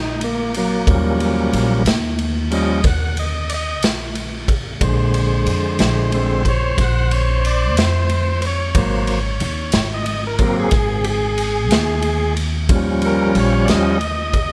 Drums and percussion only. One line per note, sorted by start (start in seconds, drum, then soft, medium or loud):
0.21 ride medium
0.54 ride medium
0.87 kick loud
0.87 ride medium
1.20 ride medium
1.53 ride medium
1.86 snare loud
1.86 ride medium
2.19 ride medium
2.52 ride medium
2.84 kick loud
2.84 snare soft
2.84 ride medium
3.17 ride medium
3.50 ride medium
3.82 snare loud
3.82 ride medium
4.15 ride medium
4.48 kick medium
4.48 ride medium
4.81 kick loud
4.81 ride medium
5.14 ride medium
5.47 ride medium
5.79 snare loud
5.79 ride medium
6.12 ride medium
6.45 kick medium
6.45 ride medium
6.78 kick loud
6.78 snare soft
6.78 ride medium
7.11 ride medium
7.45 ride medium
7.77 snare loud
7.77 ride medium
8.09 ride medium
8.42 ride medium
8.75 kick loud
8.75 ride medium
9.07 ride medium
9.40 ride medium
9.72 snare loud
9.72 ride medium
10.06 ride medium
10.39 kick medium
10.39 ride medium
10.71 kick loud
10.71 snare soft
10.71 ride medium
11.04 ride medium
11.38 ride medium
11.71 snare loud
11.71 ride medium
12.02 ride medium
12.37 ride medium
12.69 kick loud
12.69 ride medium
13.02 ride medium
13.35 ride medium
13.68 snare loud
13.68 ride medium
14.01 ride medium
14.33 kick medium
14.33 ride medium